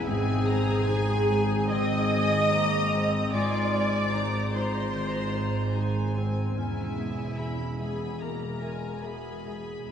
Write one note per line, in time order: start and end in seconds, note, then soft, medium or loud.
0.00 0.10 E2 medium
0.00 0.11 B2 medium
0.00 0.27 G#3 medium
0.00 0.46 G#4 medium
0.00 0.10 B4 medium
0.00 0.11 B5 medium
0.06 3.29 G#1 medium
0.06 3.29 G#2 medium
0.06 1.67 G#2 medium
0.06 3.31 G#2 medium
0.06 0.88 C4 loud
0.06 3.32 C4 medium
0.06 1.67 G#4 loud
0.06 3.29 G#4 medium
0.06 1.70 G#5 loud
0.06 0.46 G#5 medium
0.28 1.91 G#3 medium
0.47 0.84 G#3 medium
0.47 0.86 G#4 medium
0.47 0.84 C5 medium
0.47 0.87 A#5 medium
0.67 1.49 C5 medium
0.87 1.73 D#4 medium
0.87 1.26 G#4 medium
0.87 1.26 C5 medium
0.87 1.69 G#5 medium
1.08 2.71 C6 medium
1.29 1.67 G#3 medium
1.29 2.10 G#4 medium
1.29 1.68 C5 medium
1.51 2.30 C5 medium
1.71 2.36 D#3 medium
1.71 4.94 D#3 medium
1.71 2.25 C4 medium
1.71 3.33 D#5 loud
1.71 2.50 G#5 medium
1.71 3.33 D#6 loud
1.92 3.51 G#3 soft
2.11 2.48 G#3 medium
2.11 2.51 G#4 medium
2.11 2.48 C5 medium
2.31 3.12 C5 medium
2.52 2.95 A#3 medium
2.52 2.88 G#4 medium
2.52 2.88 C5 medium
2.52 3.33 A#5 medium
2.72 4.33 C6 medium
2.93 3.29 G#3 medium
2.93 3.33 C4 medium
2.93 3.73 G#4 medium
2.93 3.29 C5 medium
3.13 3.92 C5 medium
3.32 6.53 G#1 medium
3.32 6.60 G#2 medium
3.32 6.53 G#2 medium
3.32 4.91 G#2 medium
3.32 6.41 C4 medium
3.32 4.17 F4 loud
3.32 6.40 G#4 medium
3.32 4.52 D5 loud
3.32 3.72 G#5 medium
3.32 4.52 D6 loud
3.53 5.14 G#3 medium
3.74 4.10 G#3 medium
3.74 4.14 G#4 medium
3.74 4.10 C5 medium
3.74 4.14 G#5 medium
4.14 4.57 D#4 medium
4.14 4.50 G#4 soft
4.14 4.51 C5 medium
4.14 5.75 A#5 medium
4.34 5.95 C6 medium
4.52 4.91 G#3 soft
4.52 5.78 F4 medium
4.52 5.35 G#4 medium
4.52 6.13 C5 loud
4.52 4.91 C5 medium
4.52 6.15 C6 medium
4.75 5.54 C5 medium
4.94 6.61 D#3 medium
4.94 5.35 G#3 soft
5.15 6.76 G#3 soft
5.36 5.72 G#3 soft
5.36 5.74 G#4 medium
5.36 5.72 C5 soft
5.56 6.35 C5 medium
5.75 6.18 D#4 medium
5.75 6.15 G#4 medium
5.75 6.13 G#4 soft
5.75 6.13 C5 medium
5.75 6.57 G#5 medium
5.96 6.60 C6 medium
6.16 6.53 G#3 soft
6.16 6.57 C4 medium
6.16 9.92 G#4 medium
6.16 6.53 C5 soft
6.37 6.60 C5 medium
6.55 9.88 E1 medium
6.55 9.89 E2 medium
6.55 8.17 E2 medium
6.55 9.86 B2 medium
6.55 7.00 C#4 medium
6.55 7.75 E4 medium
6.55 9.86 G#4 medium
6.55 7.75 E5 medium
6.55 7.37 G#5 medium
6.77 8.40 G#3 soft
6.98 7.35 G#3 soft
6.98 7.40 B3 medium
6.98 7.35 E5 soft
7.18 7.99 E5 soft
7.38 7.81 C#4 medium
7.38 7.75 G#4 soft
7.38 7.76 E5 soft
7.38 7.78 B5 medium
7.59 9.25 E6 soft
7.78 8.17 G#3 soft
7.78 8.22 B3 medium
7.78 8.21 G#4 medium
7.78 8.17 E5 soft
7.78 8.20 G#5 medium
7.78 8.20 B5 medium
8.01 8.82 E5 soft
8.20 8.87 B2 soft
8.20 9.92 B2 soft
8.20 8.64 A#3 medium
8.20 9.04 A#4 medium
8.20 8.62 A#5 soft
8.20 9.04 A#5 medium
8.41 9.92 G#3 soft
8.62 9.05 G#3 soft
8.62 9.00 G#3 soft
8.62 9.00 E5 soft
8.62 9.03 G#5 soft
8.83 9.67 E5 soft
9.03 9.60 B3 soft
9.03 9.42 G#4 soft
9.03 9.90 G#4 medium
9.03 9.42 E5 soft
9.03 9.89 G#5 medium
9.03 9.45 B5 soft
9.26 9.92 E6 soft
9.46 9.85 G#3 soft
9.46 9.86 E5 soft
9.46 9.89 B5 soft
9.68 9.92 E5 soft
9.88 9.92 E2 soft
9.88 9.92 E5 soft